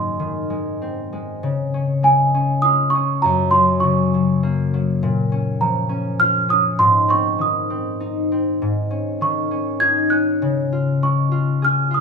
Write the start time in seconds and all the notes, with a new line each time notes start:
Already playing: G#2 G#3 A#3 C#4 C6
0.19 D#3
0.50 G#3
0.82 C4
1.13 G#3
1.43 C#3
1.74 C#4
2.03 G#3 G#5
2.34 C#4
2.62 F4 D#6
2.90 C#6
2.95 C#4
3.22 F#2 A#5
3.51 F#3 C6
3.80 C#3 C#6
4.14 F#3
4.43 A#3
4.74 F#3
5.03 A#2
5.32 C#4
5.61 F3 A#5
5.89 C#4
6.19 F4 F6
6.49 C#4 D#6
6.79 G#2 C6
7.08 C4 C#6
7.39 D#3 D#6
7.70 C4
8.00 D#4
8.32 C4
8.62 G#2
8.91 C#4
9.21 D#3 C#6
9.51 C#4
9.80 D#4 G#6
10.10 C#4 F#6
10.42 C#3
10.73 F4
11.03 G#3 C#6
11.32 F4
11.62 G#4 F6
11.91 F4 D#6